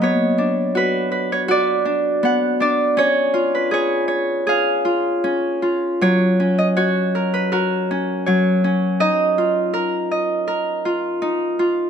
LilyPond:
\new Staff \with { instrumentName = "Harp" } { \time 4/4 \key fis \major \tempo 4 = 81 << { cis''4 b'8. cis''16 d''4 fis''8 d''8 | cis''8. b'16 cis''4 eis''4. r8 | cis''8. dis''16 cis''8. b'16 ais'4 cis''4 | dis''4 ais'4 ais'4. r8 | } \\ { b8 d'8 fis'8 b'8 fis'8 d'8 b8 d'8 | cis'8 eis'8 gis'8 cis''8 gis'8 eis'8 cis'8 eis'8 | fis8 cis'8 fis'8 ais'8 fis'8 cis'8 fis8 cis'8 | dis'8 eis'4 dis''4 eis'8 dis'8 eis'8 | } >> }